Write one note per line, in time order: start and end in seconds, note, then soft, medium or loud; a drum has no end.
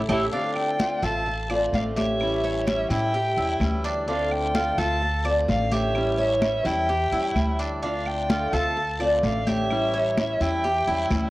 0.08 0.26 A1 medium
0.08 0.24 A3 medium
0.08 0.24 C#4 medium
0.08 0.24 E4 medium
0.08 0.25 E4 loud
0.08 0.24 G4 medium
0.08 0.24 A4 loud
0.08 0.23 C#5 medium
0.08 high conga loud
0.08 long guiro loud
0.08 claves loud
0.31 0.77 D3 medium
0.31 0.78 A3 medium
0.31 0.79 C4 medium
0.31 0.78 D4 medium
0.31 0.79 F4 medium
0.31 0.54 D5 medium
0.31 0.55 F5 medium
0.31 high conga soft
0.31 long guiro medium
0.56 1.05 D5 medium
0.56 1.05 G5 loud
0.56 high conga soft
0.56 claves medium
0.78 1.01 D3 medium
0.78 1.02 A3 medium
0.78 1.02 C4 medium
0.78 1.02 F4 medium
0.78 1.01 F4 medium
0.78 high conga loud
0.78 short guiro medium
1.02 1.69 A1 medium
1.02 1.26 A3 medium
1.02 1.25 C4 medium
1.02 1.25 F4 medium
1.02 1.48 A4 medium
1.02 1.50 F5 medium
1.02 1.50 A5 loud
1.02 high conga soft
1.02 short guiro medium
1.26 muted steel-string acoustic guitar stroke medium
1.26 high conga soft
1.26 long guiro medium
1.49 1.73 A3 medium
1.49 1.73 C4 medium
1.49 1.72 F4 medium
1.49 1.95 D5 medium
1.49 high conga soft
1.49 claves medium
1.73 2.84 A1 loud
1.73 2.19 D3 medium
1.73 2.20 A3 medium
1.73 2.20 C4 medium
1.73 2.20 F4 medium
1.73 1.79 D5 medium
1.73 1.84 F5 medium
1.73 high conga medium
1.73 short guiro medium
1.96 2.42 G4 medium
1.96 2.63 C#5 medium
1.96 2.63 E5 loud
1.96 high conga medium
1.96 short guiro medium
2.20 2.65 E3 medium
2.20 2.66 G3 medium
2.20 2.67 C#4 medium
2.20 2.67 E4 medium
2.20 high conga soft
2.20 long guiro medium
2.20 claves medium
2.44 2.89 C#5 medium
2.44 high conga soft
2.66 2.89 E3 medium
2.66 2.90 G3 medium
2.66 2.90 C#4 medium
2.66 2.89 E4 medium
2.66 2.89 C#5 medium
2.66 2.89 E5 loud
2.66 high conga loud
2.66 short guiro medium
2.66 claves medium
2.90 3.34 A2 loud
2.90 3.13 G3 medium
2.90 3.13 C#4 medium
2.90 3.13 E4 medium
2.90 3.81 E5 medium
2.90 3.81 G5 loud
2.90 high conga soft
2.90 short guiro medium
3.14 3.37 G4 medium
3.14 muted steel-string acoustic guitar stroke medium
3.14 high conga soft
3.14 long guiro medium
3.37 3.59 E2 medium
3.37 3.61 G3 medium
3.37 3.60 C#4 medium
3.37 3.60 E4 medium
3.37 3.83 E4 medium
3.37 high conga soft
3.60 4.71 D2 loud
3.60 4.07 E3 medium
3.60 4.07 G3 medium
3.60 4.08 C#4 medium
3.60 4.08 E4 medium
3.60 high conga medium
3.60 short guiro medium
3.60 claves medium
3.84 4.07 D4 loud
3.84 high conga soft
3.84 short guiro medium
4.08 4.54 D3 medium
4.08 4.54 A3 medium
4.08 4.54 C4 medium
4.08 4.53 D4 medium
4.08 4.55 F4 medium
4.08 4.33 D5 medium
4.08 4.34 F5 medium
4.08 high conga soft
4.08 long guiro medium
4.32 4.80 D5 medium
4.32 4.80 G5 loud
4.32 high conga soft
4.32 claves medium
4.55 4.77 D3 medium
4.55 4.78 A3 medium
4.55 4.78 C4 medium
4.55 4.77 F4 medium
4.55 high conga loud
4.55 short guiro medium
4.78 5.44 D2 loud
4.78 5.01 A3 medium
4.78 5.01 C4 medium
4.78 5.00 F4 medium
4.78 5.23 A4 medium
4.78 5.25 F5 medium
4.78 5.25 A5 loud
4.78 high conga soft
4.78 short guiro medium
5.02 muted steel-string acoustic guitar stroke medium
5.02 high conga soft
5.02 long guiro medium
5.25 5.47 A3 medium
5.25 5.48 C4 medium
5.25 5.47 F4 medium
5.25 5.70 D5 medium
5.25 high conga soft
5.25 claves medium
5.48 6.59 A1 loud
5.48 5.94 D3 medium
5.48 5.94 A3 medium
5.48 5.95 C4 medium
5.48 5.95 F4 medium
5.48 5.74 D5 medium
5.48 5.75 F5 medium
5.48 high conga medium
5.48 short guiro medium
5.72 6.17 G4 medium
5.72 6.19 C#5 medium
5.72 6.19 E5 loud
5.72 high conga medium
5.72 short guiro medium
5.95 6.41 E3 medium
5.95 6.42 G3 medium
5.95 6.42 C#4 medium
5.95 6.42 E4 medium
5.95 high conga soft
5.95 long guiro medium
5.95 claves medium
6.18 6.64 C#5 medium
6.18 6.41 C#5 medium
6.18 6.41 E5 medium
6.18 high conga soft
6.42 6.65 E3 medium
6.42 6.65 G3 medium
6.42 6.66 C#4 medium
6.42 6.65 E4 medium
6.42 6.68 C#5 medium
6.42 6.68 E5 loud
6.42 high conga loud
6.42 short guiro medium
6.42 claves medium
6.65 7.09 E2 medium
6.65 6.88 G3 medium
6.65 6.89 C#4 medium
6.65 6.88 E4 medium
6.65 7.60 E5 medium
6.65 7.60 G5 loud
6.65 high conga soft
6.65 short guiro medium
6.89 7.12 G4 medium
6.89 muted steel-string acoustic guitar stroke medium
6.89 high conga soft
6.89 long guiro medium
7.12 7.34 E2 medium
7.12 7.36 G3 medium
7.12 7.36 C#4 medium
7.12 7.58 E4 medium
7.12 7.35 E4 medium
7.12 high conga soft
7.35 8.46 D2 medium
7.35 7.82 E3 medium
7.35 7.83 G3 medium
7.35 7.83 C#4 medium
7.35 7.83 E4 medium
7.35 high conga medium
7.35 short guiro medium
7.35 claves medium
7.59 7.82 D4 medium
7.59 high conga soft
7.59 short guiro medium
7.82 8.28 D3 medium
7.82 8.29 A3 medium
7.82 8.29 C4 medium
7.82 8.28 D4 medium
7.82 8.30 F4 medium
7.82 8.07 D5 medium
7.82 8.09 F5 medium
7.82 high conga soft
7.82 long guiro medium
8.06 8.55 D5 medium
8.06 8.54 G5 loud
8.06 high conga soft
8.06 claves medium
8.29 8.52 D3 medium
8.29 8.52 A3 medium
8.29 8.53 C4 medium
8.29 8.52 F4 medium
8.29 8.51 F4 medium
8.29 high conga loud
8.29 short guiro medium
8.52 9.19 D2 loud
8.52 8.76 A3 medium
8.52 8.76 C4 medium
8.52 8.75 F4 medium
8.52 8.99 A4 medium
8.52 9.00 F5 medium
8.52 9.00 A5 loud
8.52 high conga soft
8.52 short guiro medium
8.76 muted steel-string acoustic guitar stroke medium
8.76 high conga soft
8.76 long guiro medium
9.00 9.23 A3 medium
9.00 9.23 C4 medium
9.00 9.22 F4 medium
9.00 9.45 D5 medium
9.00 high conga soft
9.00 claves medium
9.23 10.34 A1 loud
9.23 9.69 D3 medium
9.23 9.70 A3 medium
9.23 9.70 C4 medium
9.23 9.70 F4 medium
9.23 9.49 D5 medium
9.23 9.50 F5 medium
9.23 high conga medium
9.23 short guiro medium
9.47 9.92 G4 medium
9.47 10.17 C#5 medium
9.47 10.17 E5 loud
9.47 high conga medium
9.47 short guiro medium
9.70 10.16 E3 medium
9.70 10.17 G3 medium
9.70 10.17 C#4 medium
9.70 10.17 E4 medium
9.70 high conga soft
9.70 long guiro medium
9.70 claves medium
9.94 10.39 C#5 medium
9.94 high conga soft
10.17 10.40 E3 medium
10.17 10.40 G3 medium
10.17 10.40 C#4 medium
10.17 10.39 E4 medium
10.17 10.43 C#5 medium
10.17 10.43 E5 medium
10.17 high conga loud
10.17 short guiro medium
10.17 claves medium
10.40 10.84 E2 medium
10.40 10.64 G3 medium
10.40 10.64 C#4 medium
10.40 10.63 E4 medium
10.40 11.30 E5 medium
10.40 11.30 G5 loud
10.40 high conga soft
10.40 short guiro medium
10.64 10.87 G4 medium
10.64 muted steel-string acoustic guitar stroke medium
10.64 high conga soft
10.64 long guiro medium
10.87 11.09 E2 medium
10.87 11.10 G3 medium
10.87 11.11 C#4 medium
10.87 11.10 E4 medium
10.87 11.30 E4 medium
10.87 high conga soft
11.10 11.30 D2 loud
11.10 11.30 E3 medium
11.10 11.30 G3 medium
11.10 11.30 C#4 medium
11.10 11.30 E4 medium
11.10 high conga medium
11.10 short guiro medium
11.10 claves medium